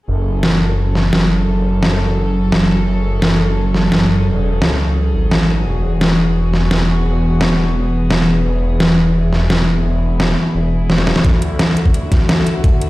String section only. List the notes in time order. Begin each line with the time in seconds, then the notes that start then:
0.08 F#3 C#4 G#4 A4
5.66 E3 B3 F#4
8.45 E4
11.24 D3 A3 F#4